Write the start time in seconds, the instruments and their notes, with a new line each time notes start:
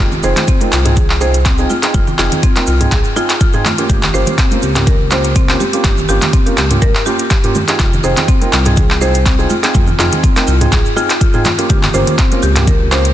0.00 analog synth bass F1
0.12 low conga, cabasa
0.23 analog synth bass F1, felt piano C4 D#4 F4 G#4, marimba C5, cabasa
0.36 clap, closed hi-hat, muted conga, high conga, low conga, cabasa
0.47 marimba C4, kick, closed hi-hat, cabasa
0.61 felt piano C4 D#4 F4 A#4, closed hi-hat, muted conga, high conga, cabasa
0.72 analog synth bass C2, marimba F4, clap, cabasa
0.85 felt piano C4 D#4 F4 G#4, closed hi-hat, mid tom, muted conga, cabasa
0.96 marimba G#4, kick, closed hi-hat, low conga, cabasa
1.10 clap
1.21 felt piano C4 D#4 F4 G#4, marimba C5, muted conga, cabasa
1.34 closed hi-hat, cabasa
1.45 marimba C4, kick, clap, closed hi-hat, muted conga, cabasa
1.58 felt piano C4 D#4 F4 G#4, cabasa
1.70 marimba F4, muted conga, high conga, cabasa
1.83 felt piano C4 D#4 F4 G#4, clap, closed hi-hat, cabasa
1.94 analog synth bass F1, marimba F4, kick, closed hi-hat, muted conga, high conga, cabasa
2.07 low conga, cabasa
2.19 analog synth bass F1, felt piano C4 D#4 F4 G#4, marimba F4, clap, cabasa
2.32 closed hi-hat, muted conga, high conga, low conga, cabasa
2.43 marimba C4, kick, closed hi-hat, cabasa
2.56 felt piano C4 D#4 F4 A#4, clap, closed hi-hat, muted conga, high conga, cabasa
2.67 analog synth bass C2, marimba F4, cabasa
2.80 felt piano C4 D#4 F4 G#4, closed hi-hat, mid tom, muted conga, cabasa
2.92 analog synth bass C2, marimba G#4, kick, clap, closed hi-hat, cabasa
3.04 cabasa
3.16 felt piano C4 D#4 F4 G#4, marimba F4, muted conga, cabasa
3.30 clap, closed hi-hat, cabasa
3.40 marimba F4, kick, closed hi-hat, muted conga, cabasa
3.53 felt piano C4 D#4 F4 G#4, mid tom, cabasa
3.65 marimba F4, clap, muted conga, high conga, low conga, cabasa
3.78 felt piano A#3 C#4 F4 G4, closed hi-hat, cabasa
3.89 analog synth bass G1, marimba G4, kick, closed hi-hat, muted conga, high conga, cabasa
4.02 clap, low conga, cabasa
4.14 analog synth bass G1, felt piano A#3 C#4 F4 G4, marimba C5, cabasa
4.26 closed hi-hat, muted conga, high conga, low conga, cabasa
4.38 marimba C4, kick, clap, closed hi-hat, cabasa
4.51 felt piano A#3 C#4 F4 A#4, closed hi-hat, muted conga, high conga, cabasa
4.62 analog synth bass C#2, marimba G4, cabasa
4.75 felt piano A#3 C#4 F4 G4, clap, closed hi-hat, mid tom, muted conga, cabasa
4.86 marimba A#4, kick, closed hi-hat, low conga, cabasa
5.11 felt piano A#3 C#4 F4 G4, marimba C5, clap, muted conga, cabasa
5.24 closed hi-hat, cabasa
5.35 marimba C4, kick, closed hi-hat, muted conga, cabasa
5.49 felt piano A#3 C#4 F4 G4, clap, cabasa
5.60 marimba G4, muted conga, high conga, cabasa
5.73 felt piano A#3 C#4 F4 G4, closed hi-hat, cabasa
5.84 analog synth bass G1, marimba G4, kick, clap, closed hi-hat, muted conga, high conga, cabasa
5.98 low conga, cabasa
6.09 analog synth bass G1, felt piano A#3 C#4 F4 G4, marimba G4, cabasa
6.22 clap, closed hi-hat, muted conga, high conga, low conga, cabasa
6.33 marimba C4, kick, closed hi-hat, cabasa
6.46 felt piano A#3 C#4 F4 A#4, closed hi-hat, muted conga, high conga, cabasa
6.57 analog synth bass C#2, marimba G4, clap, cabasa
6.70 felt piano A#3 C#4 F4 G4, closed hi-hat, mid tom, muted conga, cabasa
6.82 analog synth bass C#2, marimba A#4, kick, closed hi-hat, mid tom, cabasa
6.95 clap, cabasa
7.06 felt piano A#3 C#4 F4 G4, marimba G4, muted conga, cabasa
7.19 closed hi-hat, cabasa
7.30 marimba G4, kick, clap, closed hi-hat, muted conga, cabasa
7.44 felt piano A#3 C#4 F4 G4, closed hi-hat, mid tom, cabasa
7.55 marimba G4, muted conga, high conga, low conga, cabasa
7.68 felt piano C4 D#4 F4 G#4, clap, closed hi-hat, cabasa
7.79 analog synth bass F1, marimba F4, kick, clap, closed hi-hat, muted conga, high conga, cabasa
7.93 low conga, cabasa
8.04 analog synth bass F1, felt piano C4 D#4 F4 G#4, marimba C5, cabasa
8.17 clap, closed hi-hat, muted conga, high conga, low conga, cabasa
8.28 marimba C4, kick, closed hi-hat, cabasa
8.41 felt piano C4 D#4 F4 A#4, closed hi-hat, muted conga, high conga, cabasa
8.53 analog synth bass C2, marimba F4, clap, cabasa
8.65 felt piano C4 D#4 F4 G#4, closed hi-hat, mid tom, muted conga, cabasa
8.76 marimba G#4, kick, closed hi-hat, low conga, cabasa
8.90 clap
9.01 felt piano C4 D#4 F4 G#4, marimba C5, muted conga, cabasa
9.14 closed hi-hat, cabasa
9.25 marimba C4, kick, clap, closed hi-hat, muted conga, cabasa
9.39 felt piano C4 D#4 F4 G#4, cabasa
9.50 marimba F4, muted conga, high conga, cabasa
9.63 felt piano C4 D#4 F4 G#4, clap, closed hi-hat, cabasa
9.74 analog synth bass F1, marimba F4, kick, closed hi-hat, muted conga, high conga, cabasa
9.87 low conga, cabasa
9.99 analog synth bass F1, felt piano C4 D#4 F4 G#4, marimba F4, clap, cabasa
10.12 closed hi-hat, muted conga, high conga, low conga, cabasa
10.23 marimba C4, kick, closed hi-hat, cabasa
10.36 felt piano C4 D#4 F4 A#4, clap, closed hi-hat, muted conga, high conga, cabasa
10.47 analog synth bass C2, marimba F4, cabasa
10.61 felt piano C4 D#4 F4 G#4, closed hi-hat, mid tom, muted conga, cabasa
10.72 analog synth bass C2, marimba G#4, kick, clap, closed hi-hat, mid tom, cabasa
10.85 cabasa
10.96 felt piano C4 D#4 F4 G#4, marimba F4, muted conga, cabasa
11.09 clap, closed hi-hat, cabasa
11.21 marimba F4, kick, closed hi-hat, muted conga, cabasa
11.33 felt piano C4 D#4 F4 G#4, mid tom, cabasa
11.45 marimba F4, clap, muted conga, high conga, low conga, cabasa
11.58 felt piano A#3 C#4 F4 G4, closed hi-hat, cabasa
11.69 analog synth bass G1, marimba G4, kick, closed hi-hat, muted conga, high conga, cabasa
11.83 clap, low conga, cabasa
11.94 analog synth bass G1, felt piano A#3 C#4 F4 G4, marimba C5, cabasa
12.07 closed hi-hat, muted conga, high conga, low conga, cabasa
12.18 marimba C4, kick, clap, closed hi-hat, cabasa
12.31 felt piano A#3 C#4 F4 A#4, closed hi-hat, muted conga, high conga, cabasa
12.43 analog synth bass C#2, marimba G4, cabasa
12.56 felt piano A#3 C#4 F4 G4, clap, closed hi-hat, mid tom, muted conga, cabasa
12.67 marimba A#4, kick, closed hi-hat, low conga, cabasa
12.92 felt piano A#3 C#4 F4 G4, marimba C5, clap, muted conga, cabasa
13.05 closed hi-hat, cabasa